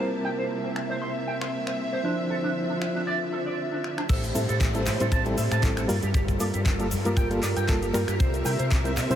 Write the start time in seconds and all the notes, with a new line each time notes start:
Already playing: A#3
0.00 C3 G3 C4 E4 A#4 E5
0.25 G5
0.38 C5
0.64 C5
0.76 finger snap
0.90 C5
1.02 C6
1.28 G5
1.41 C6, finger snap
1.67 C5, finger snap
1.93 C5
2.04 D3 F3 D4 E4 C5
2.30 A4
2.44 D4
2.69 D4
2.82 finger snap
2.95 D4
3.07 D5
3.32 A4
3.46 D5
3.72 D4
3.84 finger snap
3.98 D4, finger snap
4.09 A1 A3 E4 G4 A4 C5, kick, closed hi-hat, crash, downlifter, shaker
4.23 closed hi-hat, shaker
4.35 A2 G3 C4 E4 A4 E5, open hi-hat, shaker
4.49 A2 A4, closed hi-hat, shaker
4.61 A1, kick, clap, closed hi-hat, shaker
4.74 G3 C4 E4 A4, closed hi-hat, shaker
4.86 A2, finger snap, clap, open hi-hat, shaker
5.00 A2 G3 C4 E4 A4 C5, closed hi-hat, shaker
5.12 A1 A5, kick, closed hi-hat, shaker
5.25 G3 C4 E4 A4, closed hi-hat, shaker
5.38 A2 E5, open hi-hat, shaker
5.51 A2 A5, finger snap, closed hi-hat, shaker
5.63 A1 G3 C4 E4 A4, kick, clap, closed hi-hat, shaker
5.77 A4, finger snap, closed hi-hat, shaker
5.88 G2 G3 A#3 F4 A4 A#4, open hi-hat, shaker
6.03 G2 G4, closed hi-hat, shaker
6.14 G1 G4, kick, closed hi-hat, shaker
6.28 kick, closed hi-hat, shaker
6.40 G2 G3 A#3 F4 A4 D5, open hi-hat, shaker
6.54 G2 G4, closed hi-hat, shaker
6.66 G1, kick, clap, closed hi-hat, shaker
6.79 G3 A#3 F4 G4 A4, closed hi-hat, shaker
6.91 G2, open hi-hat, shaker
7.05 G2 G3 A#3 F4 G4 A#4, closed hi-hat, shaker
7.17 G1 G5, kick, closed hi-hat, shaker
7.30 G3 A#3 F4 A4, closed hi-hat, shaker
7.43 G2 D5, clap, open hi-hat, shaker
7.56 G2 G5, closed hi-hat, shaker
7.68 G1 G3 A#3 F4 A4, kick, clap, closed hi-hat, shaker
7.82 G4, closed hi-hat, shaker
7.93 G2 G3 A#3 F4 A#4, finger snap, open hi-hat, shaker
8.08 G2 G4, finger snap, closed hi-hat, shaker
8.19 C2 C4 G4 C5 E5, kick, closed hi-hat, shaker
8.33 closed hi-hat, shaker
8.45 C3 G3 C4 E4 A#4 G5, open hi-hat, shaker
8.59 C3 C5, closed hi-hat, shaker
8.71 C2, kick, clap, closed hi-hat, shaker
8.84 G3 C4 E4 A#4 C5, closed hi-hat, shaker
8.96 C3, finger snap, clap, open hi-hat, shaker
9.10 C3 G3 C4 E4 C5, closed hi-hat, shaker